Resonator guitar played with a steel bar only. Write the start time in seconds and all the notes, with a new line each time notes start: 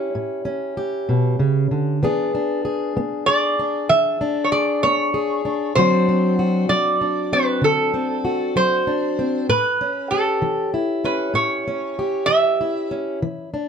3.26 D5
3.89 E5
4.44 C#5
4.52 D5
4.83 C#5
5.75 C5
6.69 D5
7.33 B4
7.64 A4
8.57 C5
9.49 B4
10.11 A4
11.05 B4
11.35 C#5
12.26 E5